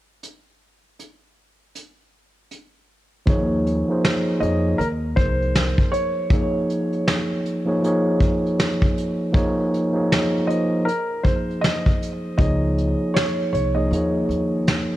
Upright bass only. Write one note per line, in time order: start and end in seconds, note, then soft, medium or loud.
3.27 3.82 D#2 loud
4.41 4.75 F2 medium
4.79 5.13 D#2 loud
5.17 5.71 C2 medium
12.39 12.93 C#2 medium
13.53 13.87 C2 medium
13.91 14.24 D#2 medium
14.29 14.83 D#2 medium